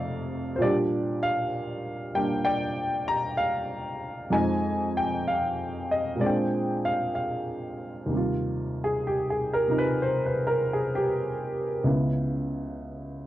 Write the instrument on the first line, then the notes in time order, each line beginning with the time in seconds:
upright piano
Already playing: F2 C3 A3 D#4 A4 D5 F5
0.56 A#2 F3 C5
0.61 G3 D4 G4 D5
1.23 F5
2.14 G3 A#3 D4 G5
2.45 D5 G5
3.08 A#5
3.37 F5
4.30 F2 F3 G#3 D#4 D#5 G#5
4.97 G5
5.28 F5
5.91 D#5
6.16 A#2 F3 G#3
6.21 C4 D4 G#4 D5
6.26 G5
6.85 F5
7.15 F5
8.06 D#2 C3
8.14 G3 F4
8.84 G#4
9.07 G4
9.30 G#4
9.53 A#4
9.68 C3 F3 D#4
9.78 B4
10.02 C5
10.26 B4
10.47 A#4
10.73 G#4
10.95 G4
11.84 C#2 C#3 B3 E4